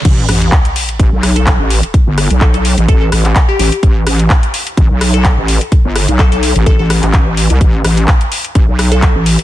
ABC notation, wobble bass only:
X:1
M:4/4
L:1/16
Q:"Swing 16ths" 1/4=127
K:C
V:1 name="Wobble bass" clef=bass
A,,,2 A,,,2 z4 A,,, B,,,4 A,,,2 z | z G,,,2 B,,,4 A,,, A,,,2 A,,,2 z2 A,,, z | A,,,2 A,,,2 z4 A,,, B,,,4 A,,,2 z | z G,,,2 B,,,4 A,,, A,,, A,,,2 A,,,4 C,, |
A,,,2 A,,,2 z4 A,,, B,,,4 A,,,2 z |]